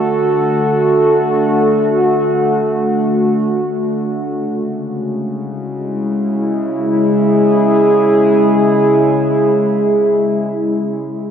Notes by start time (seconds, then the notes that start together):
Already playing: D3 A3 F#4 A4
4.26 C#3
4.54 G#3
5.31 E4
6.09 G#4